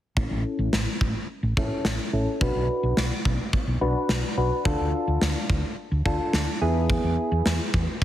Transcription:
0.17 0.29 A1 loud
0.17 0.77 C#4 medium
0.17 0.77 E4 medium
0.17 0.77 A4 medium
0.17 kick loud
0.31 0.43 A1 medium
0.59 0.71 A1 medium
0.73 0.85 A1 medium
0.73 snare loud
1.01 1.13 A1 medium
1.01 kick medium
1.43 1.55 A1 medium
1.57 1.69 A1 medium
1.57 1.87 C#4 medium
1.57 1.87 E4 medium
1.57 1.87 A4 medium
1.57 kick medium
1.85 1.97 A1 medium
1.85 snare loud
2.13 2.25 A1 medium
2.13 2.28 C#4 medium
2.13 2.28 E4 medium
2.13 2.28 A4 medium
2.41 2.53 B1 loud
2.41 3.02 D4 medium
2.41 3.02 F#4 medium
2.41 3.02 B4 medium
2.41 kick loud
2.55 2.67 B1 medium
2.83 2.95 B1 medium
2.97 3.09 B1 medium
2.97 snare loud
3.25 3.37 B1 medium
3.25 kick medium
3.53 kick medium
3.67 3.79 B1 medium
3.81 3.93 B1 medium
3.81 4.12 D4 medium
3.81 4.12 F#4 medium
3.81 4.12 B4 medium
4.09 4.21 B1 medium
4.09 snare loud
4.37 4.50 B1 medium
4.37 4.53 D4 medium
4.37 4.53 F#4 medium
4.37 4.53 B4 medium
4.65 4.78 D2 loud
4.65 5.26 D4 medium
4.65 5.26 F4 medium
4.65 5.26 A4 medium
4.65 kick loud
4.79 4.92 D2 medium
5.07 5.20 D2 medium
5.22 5.34 D2 medium
5.22 snare loud
5.50 5.62 D2 medium
5.50 kick medium
5.92 6.04 D2 medium
6.05 6.18 D2 medium
6.05 6.36 D4 medium
6.05 6.36 F4 medium
6.05 6.36 A4 medium
6.05 kick medium
6.33 6.46 D2 loud
6.33 snare loud
6.62 6.98 E2 medium
6.62 7.51 B3 medium
6.62 7.51 E4 medium
6.62 7.51 G#4 medium
6.90 kick loud
7.04 7.16 E2 loud
7.32 7.44 E2 loud
7.46 7.58 E2 loud
7.46 snare loud
7.74 7.86 E2 medium
7.74 kick medium

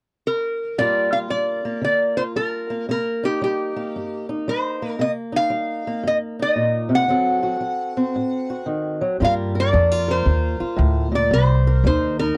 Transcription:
0.27 0.81 A#4 medium
0.78 1.28 G2 medium
0.78 1.31 G3 soft
0.78 1.65 A#3 soft
0.78 1.12 F4 soft
0.78 2.92 A#4 medium
0.78 1.14 D5 medium
1.13 2.17 F4 soft
1.13 1.18 F5 medium
1.30 1.80 G3 soft
1.30 1.83 D5 medium
1.65 2.70 A#3 soft
1.82 2.32 D3 medium
1.82 2.16 D5 medium
2.17 2.87 F4 soft
2.17 2.22 C5 medium
2.36 2.85 G3 soft
2.36 2.86 A#4 medium
2.70 2.89 A#3 soft
2.89 3.38 C3 medium
2.89 3.76 A#3 soft
2.89 3.26 A#4 medium
3.23 4.28 D#4 soft
3.23 3.42 G4 medium
3.41 3.91 G3 soft
3.41 4.26 G4 medium
3.76 4.81 A#3 soft
3.96 4.44 G2 medium
4.29 4.98 D#4 soft
4.48 4.97 G3 medium
4.48 4.92 C5 medium
4.82 4.98 A#3 soft
4.92 5.03 A#4 medium
4.99 5.49 C3 medium
4.99 5.86 A#3 soft
4.99 5.10 D#5 medium
5.32 6.38 D#4 soft
5.36 6.09 F5 medium
5.50 6.00 G3 medium
5.87 7.09 A#3 soft
6.03 6.53 G2 medium
6.07 6.16 D#5 medium
6.39 7.08 D#4 soft
6.39 6.90 D#5 medium
6.56 6.91 A#2 medium
6.89 7.08 C3 medium
6.95 8.66 F#5 medium
7.08 7.58 D3 medium
7.08 7.59 F#3 soft
7.08 7.96 C4 medium
7.08 7.42 F#4 soft
7.08 9.19 A4 medium
7.43 8.49 F#4 soft
7.61 8.11 F#3 medium
7.97 9.19 C4 medium
8.16 8.65 A2 medium
8.50 9.19 F#4 soft
8.66 9.02 D#3 medium
9.01 9.20 F#3 soft
9.20 9.70 G2 medium
9.20 9.72 G2 medium
9.20 9.73 G3 soft
9.20 12.37 A#3 medium
9.20 9.72 F4 soft
9.20 9.55 A#4 medium
9.24 9.33 F5 medium
9.55 10.08 A#4 medium
9.60 10.07 D5 medium
9.73 10.25 F2 medium
9.73 10.22 G3 medium
9.73 9.92 D4 medium
9.92 10.59 F4 soft
10.08 11.34 A#4 medium
10.08 11.18 C5 medium
10.25 10.58 D#2 medium
10.25 10.75 D3 medium
10.60 11.29 F4 medium
10.60 muted upright bass stroke soft
10.76 11.30 D2 medium
10.76 11.11 A2 medium
11.12 11.31 A#2 medium
11.12 11.33 D5 medium
11.31 11.82 C2 medium
11.31 11.80 C3 medium
11.31 11.85 C5 medium
11.67 12.37 A#4 medium
11.84 12.35 D#2 medium
11.84 12.33 G3 medium
11.84 12.19 D#4 medium
11.84 12.17 C5 medium
12.19 12.37 D#4 medium
12.19 12.37 A#4 medium

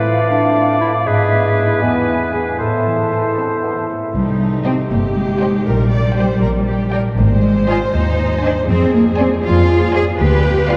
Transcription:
0.00 1.09 A2 soft
0.00 1.03 A3 soft
0.00 1.09 A3 soft
0.00 1.09 A4 soft
0.00 0.29 B4 medium
0.00 1.09 D5 soft
0.00 1.06 F5 soft
0.06 1.08 F4 soft
0.30 0.80 D4 medium
0.30 0.80 B4 soft
0.56 1.08 D5 soft
0.81 0.92 E4 medium
0.81 1.56 B4 soft
1.06 1.85 G#2 soft
1.06 1.84 G#3 soft
1.06 1.81 G#4 medium
1.06 2.58 B4 soft
1.06 1.81 E5 medium
1.32 2.07 B3 soft
1.57 2.33 E4 soft
1.57 2.62 B4 soft
1.82 2.62 E2 soft
1.82 2.59 E3 soft
1.82 2.33 B3 medium
1.82 2.59 G#5 soft
2.08 2.62 B3 soft
2.33 3.11 E4 soft
2.33 2.59 G#4 soft
2.33 2.62 G#4 soft
2.59 4.17 A2 soft
2.59 3.31 A3 soft
2.59 3.86 A4 soft
2.59 3.86 C5 soft
2.59 3.89 A5 soft
2.86 4.17 E3 soft
3.37 3.49 C4 soft
3.37 3.88 A4 soft
3.63 3.75 B3 soft
3.63 5.69 C5 soft
3.89 4.14 A3 soft
3.89 4.17 A4 soft
4.14 4.75 C2 soft
4.14 5.68 C3 soft
4.14 4.62 G3 soft
4.14 4.87 D#4 soft
4.40 5.68 C4 soft
4.65 4.73 C4 medium
4.65 5.14 G4 soft
4.65 4.84 C5 soft
4.65 4.84 D#5 soft
4.65 4.85 G5 soft
4.90 5.51 G1 soft
4.90 4.99 A#3 medium
4.90 5.66 G4 soft
4.90 5.68 D#5 soft
5.15 5.65 G#3 soft
5.15 6.16 G4 soft
5.41 5.68 D#4 soft
5.41 5.60 C5 soft
5.41 5.60 D#5 soft
5.41 5.60 G5 soft
5.66 6.26 A#1 soft
5.66 7.20 A#2 soft
5.66 6.91 G3 medium
5.66 5.92 A#4 soft
5.91 6.91 D4 soft
5.91 6.16 D5 soft
6.16 6.66 G4 soft
6.16 6.41 C5 soft
6.16 6.36 D5 soft
6.16 6.35 G5 soft
6.41 7.03 A#1 medium
6.41 6.49 A#4 soft
6.41 7.20 D5 soft
6.67 7.20 G4 soft
6.67 6.92 G4 soft
6.92 7.00 G3 medium
6.92 7.20 D4 soft
6.92 7.01 A#4 soft
6.92 7.12 D5 soft
6.92 7.12 G5 soft
7.17 7.78 G#1 medium
7.17 8.71 G#2 soft
7.17 7.20 G#3 medium
7.17 8.67 C5 medium
7.25 7.32 A#3 soft
7.31 7.68 G#3 medium
7.43 8.93 C4 soft
7.67 7.75 F4 medium
7.67 8.18 C5 soft
7.67 7.87 C5 soft
7.67 7.87 D#5 medium
7.67 7.87 G#5 medium
7.93 8.54 D#2 medium
7.93 8.43 D#4 medium
7.93 8.71 D#5 soft
8.19 10.22 C5 soft
8.43 8.52 D4 medium
8.43 8.71 D#4 soft
8.43 8.62 C5 soft
8.43 8.63 D#5 soft
8.43 8.63 G#5 soft
8.69 9.29 F2 medium
8.69 10.22 F2 soft
8.69 8.93 C4 medium
8.69 9.43 G#4 medium
8.94 9.02 A#3 medium
8.94 10.22 C4 soft
9.19 9.27 C4 medium
9.19 9.38 C5 soft
9.19 9.38 D5 medium
9.19 9.68 D5 soft
9.19 9.38 G#5 medium
9.44 10.05 F2 medium
9.44 9.94 F4 medium
9.44 10.19 G#4 medium
9.44 10.22 G#5 soft
9.69 10.68 D5 soft
9.94 10.22 G#4 soft
9.94 10.03 G#4 medium
9.94 10.14 C5 medium
9.94 10.14 D5 soft
9.94 10.13 G#5 medium
10.19 10.77 D2 medium
10.19 10.77 D3 medium
10.19 10.69 G4 medium
10.19 10.77 B4 medium
10.45 10.77 B3 soft
10.69 10.77 F4 medium
10.69 10.77 B4 soft
10.69 10.77 D5 soft
10.69 10.77 F5 medium

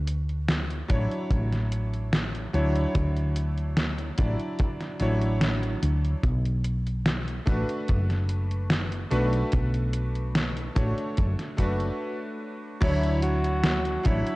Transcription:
0.00 0.82 D2 loud
0.08 closed hi-hat medium
0.29 closed hi-hat soft
0.49 snare loud
0.49 closed hi-hat medium
0.70 closed hi-hat soft
0.88 1.06 A1 loud
0.88 2.49 F#3 medium
0.88 2.49 D4 medium
0.88 2.50 E4 medium
0.88 2.50 C#5 medium
0.88 kick loud
0.88 closed hi-hat medium
1.11 closed hi-hat soft
1.31 2.46 A1 loud
1.31 kick loud
1.31 closed hi-hat medium
1.53 snare soft
1.53 closed hi-hat soft
1.72 closed hi-hat medium
1.94 closed hi-hat soft
2.13 snare loud
2.13 closed hi-hat medium
2.35 closed hi-hat soft
2.53 2.85 D2 medium
2.53 2.67 F#3 medium
2.53 2.68 D4 medium
2.53 2.68 E4 medium
2.53 2.68 C#5 loud
2.53 closed hi-hat medium
2.75 closed hi-hat soft
2.95 4.10 D2 loud
2.95 kick loud
2.95 closed hi-hat medium
3.17 closed hi-hat soft
3.36 closed hi-hat medium
3.58 closed hi-hat soft
3.77 snare loud
3.77 closed hi-hat medium
3.99 closed hi-hat soft
4.18 4.35 A1 loud
4.18 4.96 F#3 medium
4.18 4.96 D4 medium
4.18 4.96 E4 medium
4.18 4.96 D5 medium
4.18 kick loud
4.18 closed hi-hat medium
4.40 closed hi-hat soft
4.59 kick loud
4.59 closed hi-hat medium
4.81 snare soft
4.81 closed hi-hat soft
5.00 5.74 A1 medium
5.00 6.21 F#3 medium
5.00 6.22 D4 medium
5.00 6.22 E4 medium
5.00 6.23 C#5 medium
5.00 closed hi-hat medium
5.21 closed hi-hat soft
5.41 snare loud
5.41 closed hi-hat medium
5.63 closed hi-hat soft
5.83 6.13 D2 medium
5.83 closed hi-hat medium
6.05 closed hi-hat soft
6.23 7.39 B1 loud
6.23 kick loud
6.23 closed hi-hat medium
6.45 closed hi-hat soft
6.64 closed hi-hat medium
6.87 closed hi-hat soft
7.06 snare loud
7.06 closed hi-hat medium
7.28 closed hi-hat soft
7.46 7.63 A1 loud
7.46 9.06 A3 medium
7.46 9.07 D4 medium
7.46 9.07 F#4 medium
7.46 9.08 B4 medium
7.46 kick loud
7.46 closed hi-hat medium
7.69 closed hi-hat soft
7.88 9.04 F#1 loud
7.88 kick loud
7.88 closed hi-hat medium
8.10 snare soft
8.10 closed hi-hat soft
8.29 closed hi-hat medium
8.51 closed hi-hat soft
8.70 snare loud
8.70 closed hi-hat medium
8.92 closed hi-hat soft
9.10 9.42 B1 medium
9.10 9.25 A3 medium
9.10 9.25 D4 medium
9.10 9.25 F#4 medium
9.10 9.26 B4 loud
9.10 closed hi-hat medium
9.33 closed hi-hat soft
9.52 10.68 B1 loud
9.52 kick loud
9.52 closed hi-hat medium
9.74 closed hi-hat soft
9.93 closed hi-hat medium
10.15 closed hi-hat soft
10.35 snare loud
10.35 closed hi-hat medium
10.57 closed hi-hat soft
10.75 10.92 A1 loud
10.75 11.53 A3 medium
10.75 11.54 D4 medium
10.75 11.54 F#4 medium
10.75 11.54 C#5 medium
10.75 kick loud
10.75 closed hi-hat medium
10.98 closed hi-hat soft
11.17 11.34 F#1 loud
11.17 kick loud
11.17 closed hi-hat medium
11.39 snare soft
11.39 closed hi-hat soft
11.57 11.89 F#1 medium
11.57 12.79 A3 medium
11.57 12.79 D4 medium
11.57 12.79 F#4 medium
11.57 12.80 B4 medium
11.57 kick medium
11.57 closed hi-hat medium
11.80 closed hi-hat soft
12.81 13.97 D2 loud
12.81 13.97 F#3 loud
12.81 13.97 D4 medium
12.81 13.20 E4 medium
12.81 13.98 E4 medium
12.81 13.98 C#5 loud
12.81 kick loud
12.81 closed hi-hat medium
12.81 crash loud
13.03 closed hi-hat soft
13.22 14.07 F#4 loud
13.22 closed hi-hat loud
13.44 closed hi-hat soft
13.64 snare loud
13.64 closed hi-hat medium
13.85 closed hi-hat soft
14.04 14.21 A1 loud
14.04 14.36 F#3 medium
14.04 14.36 D4 medium
14.04 14.36 E4 medium
14.04 14.36 C#5 loud
14.04 kick loud
14.04 closed hi-hat medium
14.27 closed hi-hat soft

